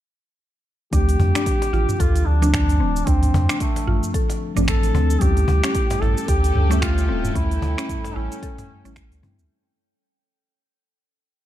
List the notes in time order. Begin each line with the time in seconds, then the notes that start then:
0.91 D2 F3 A3 C4 D4 G4, kick, open hi-hat, shaker
1.09 open hi-hat, shaker
1.19 F2, cajon bass, mid tom
1.35 D4, finger snap, cajon slap, open hi-hat, shaker
1.46 kick, open hi-hat, shaker
1.62 cajon slap, open hi-hat, shaker
1.73 A1 F4, cajon slap
1.89 mid tom, shaker
2.00 D2 F4 A4, kick, open hi-hat, shaker
2.16 open hi-hat, shaker
2.26 D2 D4
2.41 F3 A3 C4 D4, cajon slap, open hi-hat, shaker
2.53 D4, finger snap, kick, mid tom, open hi-hat, shaker
2.69 open hi-hat, shaker
2.80 D1 C4
2.96 shaker
3.05 D2 F3 A3 C4 D4, kick, open hi-hat, shaker
3.10 D4
3.23 mid tom, open hi-hat, shaker
3.34 F2, cajon bass
3.49 D4, finger snap, cajon slap, open hi-hat, shaker
3.60 A3, kick, open hi-hat, shaker
3.76 cajon slap, open hi-hat, shaker
3.87 A1 F4, mid tom
4.03 shaker
4.14 A4, kick, open hi-hat, shaker
4.30 cajon slap, open hi-hat, shaker
4.55 A1 F3 A3 C4 D4, mid tom, open hi-hat, shaker
4.59 D4
4.68 A4, finger snap, kick, open hi-hat, shaker
4.83 open hi-hat, shaker
4.94 D2 C4, cajon bass
5.11 shaker
5.19 D2 G3 A3 C#4 G4 A4 G5, kick, mid tom, open hi-hat, shaker
5.23 E4
5.37 open hi-hat, shaker
5.48 D2, cajon bass
5.64 C#4, finger snap, cajon slap, open hi-hat, shaker
5.75 kick, open hi-hat, shaker
5.90 cajon slap, mid tom, open hi-hat, shaker
6.02 A1 E4 A4, cajon slap
6.18 shaker
6.28 D2 G4 A4, kick, open hi-hat, shaker
6.44 open hi-hat, shaker
6.55 D2, mid tom
6.69 G3 A3 C#4 E5, cajon slap, open hi-hat, shaker
6.82 F4, finger snap, kick, open hi-hat, shaker
6.98 open hi-hat, shaker
7.08 D1 C4
7.25 mid tom, shaker
7.33 D2 G3 A3 C#4 E4, kick, open hi-hat, shaker
7.37 E4
7.51 open hi-hat, shaker
7.62 D2, cajon bass
7.78 C#4, finger snap, cajon slap, open hi-hat, shaker
7.89 kick, mid tom, open hi-hat, shaker
8.04 cajon slap, open hi-hat, shaker
8.15 A1 C#4 E4
8.32 shaker
8.43 A4, kick, open hi-hat, shaker
8.58 cajon slap, mid tom, open hi-hat, shaker
8.84 A1 G3 A3 C#4 E4, open hi-hat, shaker
8.96 finger snap, kick, open hi-hat, shaker
9.12 D2, open hi-hat, shaker
9.22 G2 G3 A3 C4 C#4 E4, cajon bass, mid tom
9.38 D2, shaker